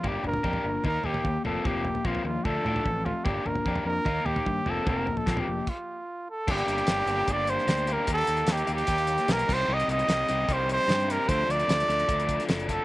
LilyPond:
<<
  \new Staff \with { instrumentName = "Trumpet" } { \time 4/4 \key g \minor \tempo 4 = 149 g'8 bes'4. bes'8 g'4 a'8 | g'4 f'8 f'8 a'4. f'8 | g'8 bes'4 bes'4 g'4 a'8 | bes'8. a'8 g'8. f'4. a'8 |
g'2 d''8 c''4 bes'8 | a'4 g'8 g'4. bes'8 c''8 | ees''8 ees''4. c''8 c''4 bes'8 | c''8 d''2~ d''16 r8. a'8 | }
  \new Staff \with { instrumentName = "Overdriven electric guitar" } { \time 4/4 \key g \minor <bes d' g'>8 <bes d'>8 <bes d' g'>8 <bes d'>8 <ees bes ees'>8 <ees bes ees'>8 <ees bes>8 <f bes c'>8 | <f bes c'>8 <f bes>8 <f bes c'>8 <f bes>8 <f a d'>8 <f a d'>8 <f a>8 <f a>8 | <bes d' g'>8 <bes d'>8 <bes d' g'>8 <bes d'>8 <ees bes ees'>8 <ees bes ees'>8 <ees bes>8 <f bes c'>8 | <f bes c'>8 <f bes>8 <f bes c'>8 <f bes>8 r2 |
<bes d' g'>4 <bes d' g'>8 <bes d' g'>8 <bes d' g'>4 <bes d' g'>8 <bes d' g'>8 | <bes ees' g'>4 <bes ees' g'>8 <bes ees' g'>8 <bes ees' g'>4 <bes ees' g'>8 <g c' ees' g'>8 | <g c' ees' g'>4 <g c' ees' g'>8 <g c' ees' g'>8 <g c' ees' g'>4 <g c' ees' g'>8 <g c' ees' g'>8 | <f a d' a'>4 <f a d' a'>8 <f a d' a'>8 <f a d' a'>4 <f a d' a'>8 <f a d' a'>8 | }
  \new Staff \with { instrumentName = "Clean electric guitar" } { \clef bass \time 4/4 \key g \minor r4. f8 ees4. r8 | r8 c8 f8 bes8 r4. d'8 | r2 r8 ees'8 g8 r8 | r8 c4 bes8 r2 |
<g, d f bes d'>4 <g, d f bes d'>8 <g, f bes>8 <d f d'>4 <d f bes d'>8 f8 | <ees g bes ees'>4 <ees g bes ees'>8 <ees g bes ees'>8 r4. <c g bes ees'>8 | <c g bes ees'>4 <c g bes ees'>8 bes8 <c g bes ees'>4 r8 <c g bes ees'>8 | d'4 <d f a d'>8 r8 <d f a d'>4 <d f a d'>8 <d f a d'>8 | }
  \new Staff \with { instrumentName = "Fingered electric bass" } { \clef bass \time 4/4 \key g \minor g,,8 g,,8 f,8 g,,8 ees,8 ees,8 ees,8 f,,8 | f,,4 bes,,8 ees,8 d,8 a,8 a,,4 | g,,8 g,,8 f,8 f,8 ees,8 ees,8 g,8 f,,8 | f,,4 bes,,8 f,,8 r2 |
g,,8 g,,8 g,,8 g,,8 g,,4 d,4 | ees,8 ees,8 ees,8 ees,8 ees,4 b,,8 c,8 | c,8 c,8 c,8 c,8 c,4 g,4 | d,8 d,8 d,8 d,8 d,4 fis,,4 | }
  \new DrumStaff \with { instrumentName = "Drums" } \drummode { \time 4/4 <bd tomfh>8 tomfh16 tomfh16 bd16 tomfh8. <bd tomfh>8 tomfh16 tomfh16 bd8 tomfh8 | <bd tomfh>8 tomfh16 tomfh16 bd16 tomfh8. <bd tomfh>8 tomfh16 tomfh16 bd8 tomfh8 | <bd tomfh>8 tomfh16 tomfh16 bd16 tomfh8. <bd tomfh>8 tomfh16 tomfh16 bd8 tomfh8 | <bd tomfh>8 tomfh16 tomfh16 <bd sn>16 tomfh8. <cymc bd>4 r4 |
<cymc bd>16 hh16 hh16 hh16 <hh sn>8 hh8 <hh bd>8 hh16 sn16 <hh sn>16 hh16 hh8 | <hh bd>8 hh16 hh16 <hh sn>16 hh16 hh16 hh16 <hh bd>16 hh16 hh16 <hh sn>16 <hh sn>16 hh16 <cymc bd sn>8 | r16 hh16 hh16 hh16 <hh sn>8 hh8 <hh bd>8 hh8 <hh sn>16 hh16 <hh sn>8 | <hh bd>8 hh16 hh16 <hh sn>16 hh16 hh16 hh16 <hh bd>16 hh16 <hh bd>16 <hh sn>16 <hh sn>16 hh16 <hh bd sn>8 | }
>>